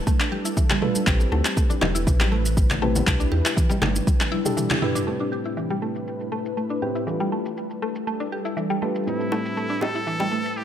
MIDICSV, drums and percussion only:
0, 0, Header, 1, 2, 480
1, 0, Start_track
1, 0, Key_signature, 0, "minor"
1, 0, Tempo, 500000
1, 1029, Time_signature, 4, 2, 24, 8
1, 10215, End_track
2, 0, Start_track
2, 0, Title_t, "Drums"
2, 67, Note_on_c, 9, 36, 110
2, 67, Note_on_c, 9, 63, 84
2, 69, Note_on_c, 9, 82, 65
2, 73, Note_on_c, 9, 62, 35
2, 163, Note_off_c, 9, 36, 0
2, 163, Note_off_c, 9, 63, 0
2, 165, Note_off_c, 9, 82, 0
2, 169, Note_off_c, 9, 62, 0
2, 194, Note_on_c, 9, 39, 75
2, 196, Note_on_c, 9, 82, 38
2, 290, Note_off_c, 9, 39, 0
2, 292, Note_off_c, 9, 82, 0
2, 308, Note_on_c, 9, 63, 60
2, 313, Note_on_c, 9, 62, 49
2, 404, Note_off_c, 9, 63, 0
2, 409, Note_off_c, 9, 62, 0
2, 436, Note_on_c, 9, 82, 76
2, 532, Note_off_c, 9, 82, 0
2, 547, Note_on_c, 9, 36, 100
2, 549, Note_on_c, 9, 82, 61
2, 643, Note_off_c, 9, 36, 0
2, 645, Note_off_c, 9, 82, 0
2, 673, Note_on_c, 9, 39, 83
2, 676, Note_on_c, 9, 64, 85
2, 676, Note_on_c, 9, 82, 34
2, 769, Note_off_c, 9, 39, 0
2, 772, Note_off_c, 9, 64, 0
2, 772, Note_off_c, 9, 82, 0
2, 786, Note_on_c, 9, 47, 75
2, 882, Note_off_c, 9, 47, 0
2, 915, Note_on_c, 9, 82, 74
2, 919, Note_on_c, 9, 62, 49
2, 921, Note_on_c, 9, 63, 59
2, 1011, Note_off_c, 9, 82, 0
2, 1015, Note_off_c, 9, 62, 0
2, 1017, Note_off_c, 9, 63, 0
2, 1026, Note_on_c, 9, 39, 90
2, 1026, Note_on_c, 9, 47, 96
2, 1027, Note_on_c, 9, 36, 115
2, 1029, Note_on_c, 9, 82, 61
2, 1122, Note_off_c, 9, 39, 0
2, 1122, Note_off_c, 9, 47, 0
2, 1123, Note_off_c, 9, 36, 0
2, 1125, Note_off_c, 9, 82, 0
2, 1155, Note_on_c, 9, 82, 34
2, 1162, Note_on_c, 9, 62, 55
2, 1251, Note_off_c, 9, 82, 0
2, 1258, Note_off_c, 9, 62, 0
2, 1270, Note_on_c, 9, 61, 74
2, 1366, Note_off_c, 9, 61, 0
2, 1392, Note_on_c, 9, 39, 80
2, 1394, Note_on_c, 9, 82, 74
2, 1397, Note_on_c, 9, 62, 39
2, 1488, Note_off_c, 9, 39, 0
2, 1490, Note_off_c, 9, 82, 0
2, 1493, Note_off_c, 9, 62, 0
2, 1507, Note_on_c, 9, 36, 96
2, 1509, Note_on_c, 9, 82, 61
2, 1603, Note_off_c, 9, 36, 0
2, 1605, Note_off_c, 9, 82, 0
2, 1635, Note_on_c, 9, 63, 92
2, 1636, Note_on_c, 9, 82, 37
2, 1639, Note_on_c, 9, 62, 52
2, 1731, Note_off_c, 9, 63, 0
2, 1732, Note_off_c, 9, 82, 0
2, 1735, Note_off_c, 9, 62, 0
2, 1742, Note_on_c, 9, 61, 86
2, 1743, Note_on_c, 9, 60, 92
2, 1747, Note_on_c, 9, 39, 87
2, 1747, Note_on_c, 9, 64, 98
2, 1757, Note_on_c, 9, 63, 94
2, 1838, Note_off_c, 9, 61, 0
2, 1839, Note_off_c, 9, 60, 0
2, 1843, Note_off_c, 9, 39, 0
2, 1843, Note_off_c, 9, 64, 0
2, 1853, Note_off_c, 9, 63, 0
2, 1878, Note_on_c, 9, 82, 76
2, 1974, Note_off_c, 9, 82, 0
2, 1987, Note_on_c, 9, 36, 110
2, 1988, Note_on_c, 9, 47, 95
2, 1991, Note_on_c, 9, 82, 63
2, 2083, Note_off_c, 9, 36, 0
2, 2084, Note_off_c, 9, 47, 0
2, 2087, Note_off_c, 9, 82, 0
2, 2115, Note_on_c, 9, 39, 77
2, 2118, Note_on_c, 9, 60, 79
2, 2118, Note_on_c, 9, 82, 37
2, 2121, Note_on_c, 9, 63, 83
2, 2211, Note_off_c, 9, 39, 0
2, 2214, Note_off_c, 9, 60, 0
2, 2214, Note_off_c, 9, 82, 0
2, 2217, Note_off_c, 9, 63, 0
2, 2233, Note_on_c, 9, 62, 53
2, 2329, Note_off_c, 9, 62, 0
2, 2357, Note_on_c, 9, 82, 76
2, 2453, Note_off_c, 9, 82, 0
2, 2468, Note_on_c, 9, 36, 94
2, 2471, Note_on_c, 9, 82, 62
2, 2472, Note_on_c, 9, 62, 41
2, 2564, Note_off_c, 9, 36, 0
2, 2567, Note_off_c, 9, 82, 0
2, 2568, Note_off_c, 9, 62, 0
2, 2596, Note_on_c, 9, 39, 88
2, 2598, Note_on_c, 9, 82, 34
2, 2599, Note_on_c, 9, 64, 93
2, 2692, Note_off_c, 9, 39, 0
2, 2694, Note_off_c, 9, 82, 0
2, 2695, Note_off_c, 9, 64, 0
2, 2708, Note_on_c, 9, 47, 78
2, 2716, Note_on_c, 9, 63, 58
2, 2804, Note_off_c, 9, 47, 0
2, 2812, Note_off_c, 9, 63, 0
2, 2833, Note_on_c, 9, 61, 66
2, 2838, Note_on_c, 9, 82, 74
2, 2840, Note_on_c, 9, 62, 55
2, 2840, Note_on_c, 9, 64, 108
2, 2929, Note_off_c, 9, 61, 0
2, 2934, Note_off_c, 9, 82, 0
2, 2936, Note_off_c, 9, 62, 0
2, 2936, Note_off_c, 9, 64, 0
2, 2948, Note_on_c, 9, 39, 91
2, 2948, Note_on_c, 9, 47, 91
2, 2949, Note_on_c, 9, 36, 114
2, 2951, Note_on_c, 9, 82, 63
2, 3044, Note_off_c, 9, 39, 0
2, 3044, Note_off_c, 9, 47, 0
2, 3045, Note_off_c, 9, 36, 0
2, 3047, Note_off_c, 9, 82, 0
2, 3078, Note_on_c, 9, 62, 51
2, 3078, Note_on_c, 9, 82, 38
2, 3174, Note_off_c, 9, 62, 0
2, 3174, Note_off_c, 9, 82, 0
2, 3182, Note_on_c, 9, 61, 70
2, 3278, Note_off_c, 9, 61, 0
2, 3316, Note_on_c, 9, 62, 44
2, 3317, Note_on_c, 9, 39, 80
2, 3319, Note_on_c, 9, 82, 77
2, 3412, Note_off_c, 9, 62, 0
2, 3413, Note_off_c, 9, 39, 0
2, 3415, Note_off_c, 9, 82, 0
2, 3429, Note_on_c, 9, 36, 94
2, 3434, Note_on_c, 9, 82, 64
2, 3525, Note_off_c, 9, 36, 0
2, 3530, Note_off_c, 9, 82, 0
2, 3553, Note_on_c, 9, 62, 56
2, 3554, Note_on_c, 9, 63, 94
2, 3558, Note_on_c, 9, 60, 79
2, 3561, Note_on_c, 9, 82, 37
2, 3649, Note_off_c, 9, 62, 0
2, 3650, Note_off_c, 9, 63, 0
2, 3654, Note_off_c, 9, 60, 0
2, 3657, Note_off_c, 9, 82, 0
2, 3663, Note_on_c, 9, 63, 92
2, 3664, Note_on_c, 9, 60, 93
2, 3670, Note_on_c, 9, 61, 92
2, 3671, Note_on_c, 9, 39, 91
2, 3671, Note_on_c, 9, 64, 101
2, 3759, Note_off_c, 9, 63, 0
2, 3760, Note_off_c, 9, 60, 0
2, 3766, Note_off_c, 9, 61, 0
2, 3767, Note_off_c, 9, 39, 0
2, 3767, Note_off_c, 9, 64, 0
2, 3797, Note_on_c, 9, 61, 58
2, 3799, Note_on_c, 9, 82, 75
2, 3893, Note_off_c, 9, 61, 0
2, 3895, Note_off_c, 9, 82, 0
2, 3909, Note_on_c, 9, 36, 115
2, 3911, Note_on_c, 9, 48, 60
2, 3911, Note_on_c, 9, 62, 40
2, 3911, Note_on_c, 9, 63, 81
2, 3913, Note_on_c, 9, 82, 60
2, 4005, Note_off_c, 9, 36, 0
2, 4007, Note_off_c, 9, 48, 0
2, 4007, Note_off_c, 9, 62, 0
2, 4007, Note_off_c, 9, 63, 0
2, 4009, Note_off_c, 9, 82, 0
2, 4037, Note_on_c, 9, 39, 78
2, 4037, Note_on_c, 9, 48, 58
2, 4040, Note_on_c, 9, 82, 38
2, 4133, Note_off_c, 9, 39, 0
2, 4133, Note_off_c, 9, 48, 0
2, 4136, Note_off_c, 9, 82, 0
2, 4150, Note_on_c, 9, 62, 55
2, 4166, Note_on_c, 9, 63, 63
2, 4246, Note_off_c, 9, 62, 0
2, 4262, Note_off_c, 9, 63, 0
2, 4276, Note_on_c, 9, 47, 67
2, 4279, Note_on_c, 9, 82, 74
2, 4372, Note_off_c, 9, 47, 0
2, 4375, Note_off_c, 9, 82, 0
2, 4390, Note_on_c, 9, 47, 83
2, 4393, Note_on_c, 9, 82, 62
2, 4396, Note_on_c, 9, 62, 39
2, 4486, Note_off_c, 9, 47, 0
2, 4489, Note_off_c, 9, 82, 0
2, 4492, Note_off_c, 9, 62, 0
2, 4516, Note_on_c, 9, 39, 91
2, 4518, Note_on_c, 9, 64, 89
2, 4519, Note_on_c, 9, 82, 36
2, 4612, Note_off_c, 9, 39, 0
2, 4614, Note_off_c, 9, 64, 0
2, 4615, Note_off_c, 9, 82, 0
2, 4630, Note_on_c, 9, 45, 93
2, 4630, Note_on_c, 9, 47, 76
2, 4726, Note_off_c, 9, 45, 0
2, 4726, Note_off_c, 9, 47, 0
2, 4758, Note_on_c, 9, 45, 88
2, 4758, Note_on_c, 9, 63, 59
2, 4761, Note_on_c, 9, 82, 72
2, 4762, Note_on_c, 9, 62, 53
2, 4854, Note_off_c, 9, 45, 0
2, 4854, Note_off_c, 9, 63, 0
2, 4857, Note_off_c, 9, 82, 0
2, 4858, Note_off_c, 9, 62, 0
2, 4872, Note_on_c, 9, 82, 58
2, 4968, Note_off_c, 9, 82, 0
2, 4999, Note_on_c, 9, 82, 35
2, 5095, Note_off_c, 9, 82, 0
2, 5240, Note_on_c, 9, 82, 77
2, 5336, Note_off_c, 9, 82, 0
2, 5352, Note_on_c, 9, 82, 60
2, 5448, Note_off_c, 9, 82, 0
2, 5478, Note_on_c, 9, 82, 37
2, 5574, Note_off_c, 9, 82, 0
2, 5718, Note_on_c, 9, 82, 70
2, 5814, Note_off_c, 9, 82, 0
2, 5831, Note_on_c, 9, 82, 60
2, 5927, Note_off_c, 9, 82, 0
2, 5959, Note_on_c, 9, 82, 36
2, 6055, Note_off_c, 9, 82, 0
2, 6198, Note_on_c, 9, 82, 74
2, 6294, Note_off_c, 9, 82, 0
2, 6311, Note_on_c, 9, 82, 59
2, 6407, Note_off_c, 9, 82, 0
2, 6439, Note_on_c, 9, 82, 34
2, 6535, Note_off_c, 9, 82, 0
2, 6678, Note_on_c, 9, 82, 72
2, 6774, Note_off_c, 9, 82, 0
2, 6792, Note_on_c, 9, 82, 61
2, 6888, Note_off_c, 9, 82, 0
2, 6917, Note_on_c, 9, 82, 36
2, 7013, Note_off_c, 9, 82, 0
2, 7158, Note_on_c, 9, 82, 73
2, 7254, Note_off_c, 9, 82, 0
2, 7270, Note_on_c, 9, 82, 67
2, 7366, Note_off_c, 9, 82, 0
2, 7396, Note_on_c, 9, 82, 39
2, 7492, Note_off_c, 9, 82, 0
2, 7636, Note_on_c, 9, 82, 77
2, 7732, Note_off_c, 9, 82, 0
2, 7750, Note_on_c, 9, 82, 62
2, 7846, Note_off_c, 9, 82, 0
2, 7879, Note_on_c, 9, 82, 37
2, 7975, Note_off_c, 9, 82, 0
2, 8116, Note_on_c, 9, 82, 75
2, 8212, Note_off_c, 9, 82, 0
2, 8231, Note_on_c, 9, 82, 62
2, 8327, Note_off_c, 9, 82, 0
2, 8358, Note_on_c, 9, 82, 37
2, 8454, Note_off_c, 9, 82, 0
2, 8596, Note_on_c, 9, 82, 77
2, 8692, Note_off_c, 9, 82, 0
2, 8711, Note_on_c, 9, 82, 66
2, 8807, Note_off_c, 9, 82, 0
2, 8838, Note_on_c, 9, 82, 37
2, 8934, Note_off_c, 9, 82, 0
2, 8945, Note_on_c, 9, 61, 81
2, 9041, Note_off_c, 9, 61, 0
2, 9077, Note_on_c, 9, 82, 81
2, 9173, Note_off_c, 9, 82, 0
2, 9191, Note_on_c, 9, 82, 63
2, 9287, Note_off_c, 9, 82, 0
2, 9318, Note_on_c, 9, 82, 38
2, 9414, Note_off_c, 9, 82, 0
2, 9420, Note_on_c, 9, 61, 86
2, 9431, Note_on_c, 9, 60, 97
2, 9516, Note_off_c, 9, 61, 0
2, 9527, Note_off_c, 9, 60, 0
2, 9557, Note_on_c, 9, 82, 76
2, 9653, Note_off_c, 9, 82, 0
2, 9670, Note_on_c, 9, 82, 64
2, 9766, Note_off_c, 9, 82, 0
2, 9791, Note_on_c, 9, 60, 72
2, 9797, Note_on_c, 9, 82, 40
2, 9887, Note_off_c, 9, 60, 0
2, 9893, Note_off_c, 9, 82, 0
2, 10037, Note_on_c, 9, 82, 74
2, 10133, Note_off_c, 9, 82, 0
2, 10150, Note_on_c, 9, 82, 62
2, 10215, Note_off_c, 9, 82, 0
2, 10215, End_track
0, 0, End_of_file